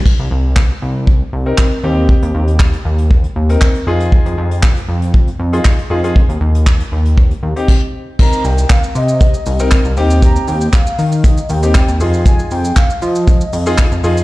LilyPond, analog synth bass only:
\new Staff \with { instrumentName = "Analog synth bass" } { \clef bass \time 4/4 \key c \minor \tempo 4 = 118 r16 c,16 c,4 c,4 c,8 r8 ees,8~ | ees,16 ees,16 ees,4 ees,4 ees,8 r8 f,8~ | f,16 f,16 f,4 f,4 f,8 r8 f,8~ | f,16 ees,16 ees,4 ees,4 ees,16 r4 r16 |
r8 c,8 r8 c4 c,8. c,16 ees,8~ | ees,8 ees,8 r8 ees4 ees,8. ees,16 f,8~ | f,8 f,8 r8 f4 f,8. f,16 f,8 | }